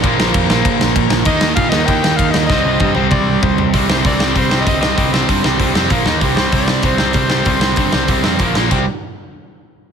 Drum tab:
CC |x-x-x-x-|x-x-x-x-|--------|--------|
HH |--------|--------|--------|o-o-o-o-|
SD |-o-o-o-o|-o-o-o-o|o-------|-o-o-o-o|
T1 |--------|--------|--oo----|--------|
T2 |--------|--------|----o---|--------|
FT |--------|--------|------oo|--------|
BD |o-o-o-o-|o-o-o-o-|o-o-o-o-|o-o-o-o-|

CC |--------|--------|--------|x-------|
HH |o-o-o-o-|o-o-o-o-|o-o-o-o-|--------|
SD |-o-o-o-o|-o-o-o-o|-o-o-o-o|--------|
T1 |--------|--------|--------|--------|
T2 |--------|--------|--------|--------|
FT |--------|--------|--------|--------|
BD |o-o-o-o-|o-o-o-o-|o-o-o-o-|o-------|